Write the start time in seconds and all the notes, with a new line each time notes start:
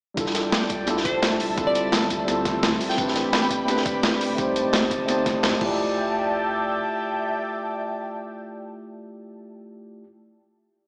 0.14 F1 G3 D4 E4 D5 E5 G5 A5, kick, closed hi-hat
0.19 F4 A4
0.26 snare
0.35 snare, closed hi-hat
0.44 F1
0.52 snare, closed hi-hat, open hi-hat
0.62 snare
0.69 C2, kick, closed hi-hat
0.85 G3 D4 E4, snare, closed hi-hat
0.89 F4 A4
0.97 snare
1.05 C5, kick, closed hi-hat
1.22 snare, closed hi-hat
1.40 closed hi-hat, open hi-hat
1.49 C2
1.55 G1 G3 C4 E4, kick, closed hi-hat
1.59 F4 A4
1.67 D5
1.75 closed hi-hat
1.84 G1
1.92 snare, closed hi-hat
2.02 snare
2.10 D2, kick, closed hi-hat
2.25 G3 C4 E4, snare, closed hi-hat
2.29 F4 A4
2.45 kick, snare, closed hi-hat
2.63 snare, closed hi-hat
2.72 kick, snare
2.81 closed hi-hat, open hi-hat
2.89 G5, snare
2.95 A1 A3 C4 D4 D5 G5 B5, kick, closed hi-hat
3.00 G4 B4
3.08 snare
3.15 snare, closed hi-hat
3.25 A1
3.33 snare, closed hi-hat, open hi-hat
3.42 snare
3.51 E1, kick, closed hi-hat
3.65 A3 C4 D4, snare, closed hi-hat
3.70 G4 B4
3.77 snare
3.86 kick, closed hi-hat
4.03 snare, closed hi-hat
4.21 closed hi-hat, open hi-hat
4.30 G1
4.35 C2 A3 C4 D#4 D#5 A5, kick, closed hi-hat
4.40 G4 C5
4.56 closed hi-hat
4.65 C2
4.73 snare, closed hi-hat
4.83 snare
4.91 G1, kick, closed hi-hat
5.05 A3 C4 D#4, snare, closed hi-hat
5.10 G4 C5
5.26 G1, kick, snare, closed hi-hat
5.43 D#2, snare, closed hi-hat
5.53 A3, kick, snare
5.59 F1 E4 F4 D5 E5 G5 A5, kick, crash
5.63 G4 D5